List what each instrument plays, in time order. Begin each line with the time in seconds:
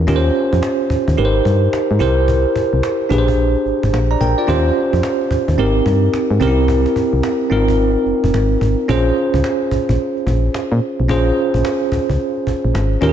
0.07 fm bass D#2, tine electric piano C#4 F4 G4 A#4, cajon bass
0.16 tine electric piano C5
0.25 cajon slap
0.35 cajon slap
0.53 fm bass F2, cajon bass
0.63 cajon slap
0.80 cajon slap
0.90 fm bass D#2, cajon bass
1.08 fm bass D#2, cajon bass
1.17 fm bass G#1, tine electric piano D#4 G4 A#4 B4
1.25 tine electric piano C5
1.35 cajon slap
1.45 fm bass G2, cajon bass
1.63 cajon slap
1.73 cajon slap
1.90 fm bass G#2, cajon slap
1.99 fm bass C2, tine electric piano E4 G4 A#4 C5, cajon bass
2.18 cajon slap
2.28 cajon bass
2.46 cajon slap
2.56 cajon bass
2.73 fm bass C2, cajon slap
2.83 cajon slap
3.01 cajon slap
3.09 fm bass A#1, tine electric piano D4 G4 G#4 B4, cajon bass
3.18 tine electric piano C5
3.28 cajon bass
3.38 cajon slap
3.56 cajon slap
3.66 fm bass G#1, cajon slap
3.83 fm bass G#1, cajon bass
3.93 fm bass A#1, cajon slap
4.11 tine electric piano D5 A#5, cajon slap
4.21 fm bass A#1, tine electric piano A#4 G5, cajon bass
4.38 tine electric piano F4 D5, cajon slap
4.47 fm bass D#2, tine electric piano C#4 F4 G4 C5, cajon bass
4.66 cajon slap
4.76 cajon slap
4.93 fm bass F2, cajon bass
5.03 cajon slap
5.21 cajon slap
5.31 fm bass D#2, cajon bass
5.48 fm bass D#2, cajon bass
5.58 fm bass G#1, tine electric piano C4 D#4 G4 A#4, cajon slap
5.76 cajon slap
5.86 fm bass G2, cajon bass
6.03 cajon slap
6.14 cajon slap
6.30 fm bass G#2, cajon slap
6.40 fm bass C2, tine electric piano C4 C#4 G4 A#4, cajon bass
6.47 tine electric piano E4
6.58 cajon slap
6.68 cajon bass
6.86 cajon slap
6.96 cajon bass
7.13 fm bass C2, cajon slap
7.23 cajon slap
7.41 cajon slap
7.50 fm bass G#1, tine electric piano C4 D#4 F4 A#4
7.68 cajon bass
7.78 cajon slap
7.96 cajon slap
8.06 fm bass F1, cajon slap
8.24 fm bass F1, cajon bass
8.34 fm bass G#1, cajon slap
8.51 cajon slap
8.61 fm bass G#1, cajon bass
8.79 cajon slap
8.88 fm bass A#1, tine electric piano C#4 F4 G#4 C5, cajon bass
9.07 cajon slap
9.17 cajon slap
9.34 fm bass C#2, cajon bass
9.44 cajon slap
9.62 cajon slap
9.71 fm bass A#1, cajon bass
9.89 fm bass A#1, cajon bass
9.99 cajon slap
10.17 cajon slap
10.27 fm bass A#1, cajon bass
10.44 cajon slap
10.54 cajon slap
10.72 fm bass A#2, cajon slap
10.99 fm bass B1, cajon slap
11.09 fm bass A#1, tine electric piano C#4 F4 G#4 C5, cajon bass
11.27 cajon slap
11.37 cajon slap
11.54 fm bass A#1, cajon bass
11.65 cajon slap
11.83 cajon slap
11.92 fm bass C#2, cajon bass
12.09 fm bass C#2, cajon bass
12.20 cajon slap
12.37 cajon slap
12.47 fm bass A#1, cajon bass
12.65 fm bass A#1, cajon slap
12.74 fm bass G#1, cajon slap
12.92 cajon slap
13.01 fm bass D#2, tine electric piano C#4 F4 G4 A#4, cajon bass
13.09 tine electric piano G#4